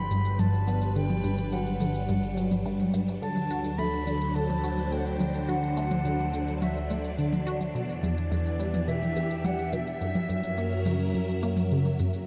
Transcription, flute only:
0.00 0.41 B5 loud
0.39 0.96 A5 loud
0.96 1.54 G5 loud
1.53 2.94 F#5 medium
3.22 3.80 A5 loud
3.78 4.36 B5 loud
4.35 4.93 A5 loud
4.92 5.00 G5 medium
4.99 5.07 F#5 medium
5.06 5.50 G5 loud
5.48 6.61 F#5 loud
6.62 7.15 E5 medium
7.75 8.90 D5 loud
8.88 9.46 E5 loud
9.45 9.74 F#5 loud
9.73 11.71 E5 loud

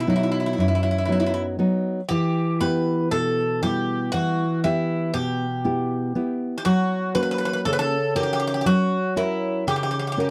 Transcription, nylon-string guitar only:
0.00 0.55 B2 medium
0.07 0.88 F#3 soft
0.07 0.89 B3 soft
0.07 0.89 D#4 medium
0.58 1.57 F#2 medium
1.08 1.58 F#3 soft
1.08 1.58 B3 soft
1.08 1.58 D#4 soft
1.59 2.00 F#3 soft
1.59 2.00 B3 soft
1.59 2.00 D#4 medium
2.10 3.09 E3 medium
2.61 3.42 B3 soft
2.61 3.42 E4 soft
2.61 3.42 G4 medium
3.12 4.10 B2 medium
3.62 4.44 G3 soft
3.62 4.43 B3 soft
3.62 4.43 E4 soft
4.14 5.11 E3 medium
4.64 5.45 B3 soft
4.64 5.45 E4 soft
4.64 5.45 G4 medium
5.14 6.12 B2 medium
5.64 6.14 B3 soft
5.64 6.15 E4 soft
5.64 6.15 G4 medium
6.15 6.55 B3 soft
6.15 6.56 E4 soft
6.15 6.56 G4 soft
6.66 7.63 F#3 medium
7.15 7.96 A#3 medium
7.15 7.96 C#4 soft
7.15 7.96 F#4 soft
7.66 8.63 C#3 medium
8.15 8.96 C#4 soft
8.15 8.96 F#4 soft
8.15 8.96 A#4 soft
8.66 9.63 F#3 medium
9.16 9.97 C#4 soft
9.16 9.97 F#4 soft
9.16 9.97 A#4 medium
9.67 10.30 C#3 medium
10.17 10.30 C#4 soft
10.17 10.30 F#4 soft
10.17 10.30 A#4 medium

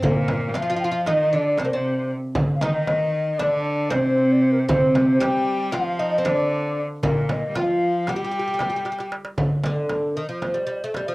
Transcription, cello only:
0.03 0.50 A#2 medium
0.49 0.57 G3 medium
0.55 1.09 F3 medium
1.07 1.35 D#3 medium
1.33 1.59 D3 medium
1.58 1.72 C3 medium
1.73 2.14 C3 medium
2.62 3.32 D#3 medium
3.32 3.41 D#3 medium
3.40 3.92 D3 medium
3.91 4.69 C3 medium
4.70 5.22 C3 medium
5.21 5.75 G3 medium
5.73 6.27 F3 medium
6.26 6.84 D3 medium
7.04 7.46 A#2 medium
7.49 7.57 G3 medium
7.56 8.11 F3 medium
8.09 9.13 G3 medium

